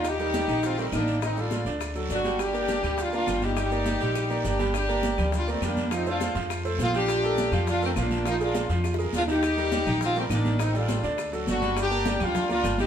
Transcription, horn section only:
X:1
M:4/4
L:1/8
Q:1/4=205
K:Gm
V:1 name="Horn section"
[EG]4 [CF] [A,C] [B,D]2 | [CE] [DF]2 z3 [D^F]2 | [DG]4 [DF] [DF]2 [EG]- | [EG]6 [DG]2 |
[DG]4 [DF] [A,C] [B,D]2 | [CE] [DF]2 z3 [CF] [DG]- | [DG]4 [DF] [A,C] [B,D]2 | [B,E] [DF]2 z3 [DF] [EG]- |
[EG]4 [CF] [A,C] [B,D]2 | [CE] [DF]2 z3 [D^F]2 | [DG]3 [DF]2 [DF]2 [EG] |]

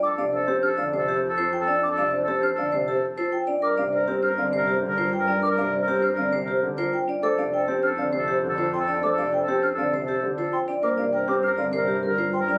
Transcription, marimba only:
X:1
M:3/4
L:1/16
Q:1/4=100
K:F
V:1 name="Marimba"
z D c z D z2 c z F z D | z D c z D z2 c z F z D | z D c z D C z c z F z D | z D c z D C z c z F z D |
c D c z D C z c z F z D | c D c z D C z c z F z D | c D c z D C B c z F z D |]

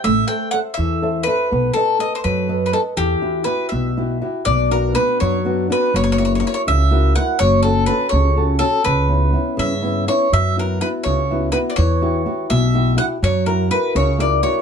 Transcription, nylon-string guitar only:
X:1
M:6/8
L:1/8
Q:3/8=82
K:Em
V:1 name="Nylon-string guitar"
A, [Ace] [Ace] E, [Ace] [Ace] | B, [AB^d] [ABd] F, [ABd] [ABd] | E, [EFG] [EFG] B,, [EFG] [EFG] | [K:F#phr] B,, [B,DF] [B,DF] F, [B,DF] [B,DF] |
F, [EF^A] [EFA] C, [EFA] [EFA] | F, [CFA] [CFA] C, [CFA] [CFA] | C, [B,CE] [B,CE] C, [B,CE] [B,CE] | F, [B,EF] [B,EF] C, [B,EF] [B,EF] |
E, [EFG] [EFG] B,, [EFG] [EFG] | F, [EF^A] [EFA] C, [EFA] [EFA] |]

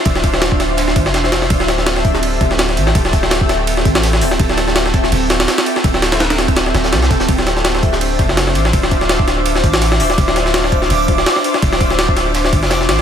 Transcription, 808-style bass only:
X:1
M:4/4
L:1/16
Q:"Swing 16ths" 1/4=166
K:Dm
V:1 name="808-style bass" clef=bass
D,,,8- D,,,2 A,,, E,,,4- E,,, | D,,,8- D,,,2 D,,,4 A,,,2 | D,,,8- D,,,2 A,,,4 D,,,2 | D,,,8 D,,,4 z4 |
D,,,8- D,,,2 D,,,2 C,,2 D,,,2 | D,,,8- D,,,2 F,,,4 A,,,2 | D,,,8- D,,,2 A,,,4 D,,,2 | D,,,8 D,,,4 z4 |
D,,,8- D,,,2 A,,, E,,,3 A,,, z |]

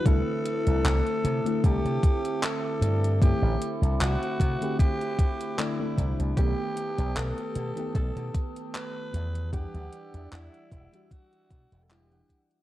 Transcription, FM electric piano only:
X:1
M:4/4
L:1/16
Q:"Swing 16ths" 1/4=76
K:Clyd
V:1 name="FM electric piano"
[D,A,CE]6- [D,A,CE] [D,A,CE]8- [D,A,CE] | [D,A,CE]6- [D,A,CE] [D,A,CG]4- [D,A,CG] [D,A,CD] [D,A,CE]3 | [^D,A,B,G]6- [D,A,B,G] [D,A,B,G]8- [D,A,B,G] | [E,G,Df]6- [E,G,Df] [E,G,DF]4- [E,G,DF] [E,G,DE] [E,G,Df]3 |]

